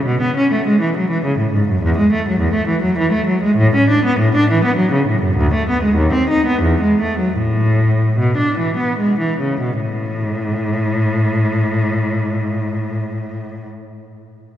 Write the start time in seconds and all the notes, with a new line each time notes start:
0.06 B2
0.21 B3
0.37 C#4
0.52 A3
0.67 G#3
0.81 E3
0.97 F#3
1.11 E3
1.25 C#3
1.39 A2
1.53 G#2
1.69 F#2
1.83 E2
1.98 G#3
2.12 A3
2.28 F#3
2.40 E2
2.54 A3
2.68 E3
2.82 F#3
2.98 E3
3.13 A3
3.27 F#3
3.43 G#3
3.57 A2
3.75 C#4
3.90 D4
4.05 B3
4.19 A2
4.36 D4
4.50 E3
4.64 B3
4.77 F#3
4.92 C#3
5.08 A2
5.22 F#2
5.37 D2
5.54 A3
5.69 B3
5.83 G#3
5.96 D#2
6.13 C4
6.30 D#4
6.46 B3
6.62 E2
6.81 G#3
7.01 A3
7.19 F#3
7.38 A2
8.18 B2
8.37 D4
8.58 E3
8.77 B3
8.99 G#3
9.19 E3
9.40 C#3
9.61 B2
9.80 A2